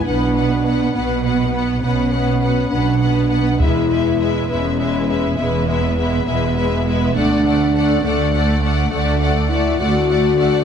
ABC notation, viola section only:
X:1
M:12/8
L:1/8
Q:3/8=68
K:Emix
V:1 name="Viola section"
B, B, B, B, B, B, B, B, B, B, B, B, | G, G, G, G, G, G, G, G, G, G, G, G, | A, A, A, A, A, A, A, A, A, A, A, A, |]